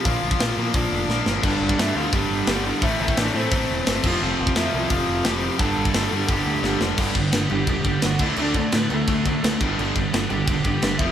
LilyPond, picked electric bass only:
\new Staff \with { instrumentName = "Picked electric bass" } { \clef bass \time 4/4 \key f \lydian \tempo 4 = 173 bes,,8 bes,,8 bes,,8 bes,8 bes,,8 f,,8 bes,,8 g,,8 | g,,8 g,,8 g,8 d,8 g,,8 g,,8 g,,4 | a,,8 a,,8 a,,8 a,8 a,,8 e,,8 g,,8 f,,8 | f,,8 f,,8 f,8 c,8 f,,8 f,,8 f,,4 |
g,,8 g,,8 g,,8 g,8 g,,8 d,8 g,,8 f,,8 | \key g \major g,,8 g,,8 g,,8 g,,8 e,,8 g,,8 g,,8 d,8 | d,4 a,8 d,8 d,4 d,8 g,,8 | g,,8 g,,8 g,,8 g,,8 e,,8 g,,8 g,,8 f,,8 | }